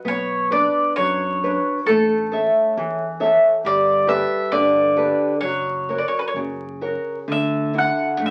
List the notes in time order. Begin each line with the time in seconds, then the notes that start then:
0.05 B1 B3 C#5
0.51 D4 B4 D5
0.96 F#2 F#3 C#5
1.44 D4 B4 C#5
1.86 A1 A3 A4
2.32 A4 C#5 E5
2.77 E2 E3
3.20 A4 C#5 E5
3.64 G1 G3 D5
4.07 G4 A4 B4 E5
4.52 G1 D3 D5
4.97 G4 A4 B4
5.41 F#1 F#3 C#5
5.89 F#4 A#4 C#5
5.98 D5
6.08 C#5
6.19 B4
6.28 C#5
6.34 F#1 C#3
6.81 F#4 A#4 C#5
7.28 D2 D3
7.32 E5
7.73 D4 E4 F#4
7.78 F#5
8.20 A1 A3
8.26 E5